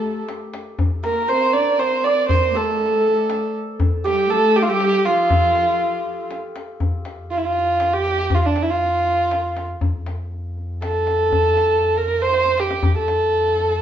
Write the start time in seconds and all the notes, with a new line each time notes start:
Already playing: A3 G4 A4 C5
0.04 tombak ka
0.28 tombak tek
0.54 tombak tek
0.79 tombak dum
1.03 A#3 A#4, tombak tek
1.28 C4 C5, tombak ka
1.54 D4 D5, tombak ka
1.74 D4
1.79 C4 C5, tombak tek
2.04 D5, tombak tek
2.29 C4 C5, tombak dum
2.55 A3 A4, tombak tek
2.63 A4
2.70 A4
2.77 A4, tombak ka
2.86 A4
2.92 A4
3.00 A4
3.05 A4, tombak ka
3.15 A4
3.29 A4, tombak tek
3.80 tombak dum
4.04 G3 G4, tombak tek
4.30 A3 A4, tombak ka
4.55 G4, tombak ka
4.63 F4
4.69 G3 G4
4.80 tombak tek
5.05 F3 F4, tombak tek
5.30 tombak dum
5.55 tombak tek
5.81 tombak ka
6.06 tombak ka
6.31 tombak tek
6.56 tombak tek
6.80 F2, tombak dum
7.05 tombak tek
7.30 F4, tombak ka
7.37 E4
7.45 F4
7.55 tombak ka
7.80 tombak tek
7.94 G4
8.30 tombak dum
8.35 F4
8.46 D4
8.56 tombak tek
8.62 E4
8.70 F4
8.81 tombak ka
9.06 tombak ka
9.31 tombak tek
9.57 tombak tek
9.81 F2, tombak dum
10.06 tombak tek
10.32 tombak ka
10.57 tombak ka
10.82 A4, tombak tek
11.07 tombak tek
11.32 tombak dum
11.57 tombak tek
11.83 tombak ka
11.97 A#4
12.08 tombak ka
12.22 C5
12.33 tombak tek
12.46 tombak ka
12.58 G4, tombak tek
12.70 tombak ka
12.83 F2, tombak dum
12.98 A4
13.08 tombak tek
13.33 tombak ka
13.58 tombak ka